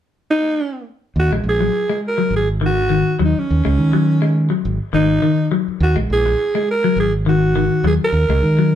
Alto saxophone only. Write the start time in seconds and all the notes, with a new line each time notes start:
0.31 D#4
1.20 F#4
1.49 G#4
2.08 A#4
2.36 G#4
2.66 F#4
3.25 D#4
3.39 C#4
4.94 D#4
5.83 F#4
6.13 G#4
6.71 A#4
7.00 G#4
7.29 F#4
7.87 G#4
8.04 A#4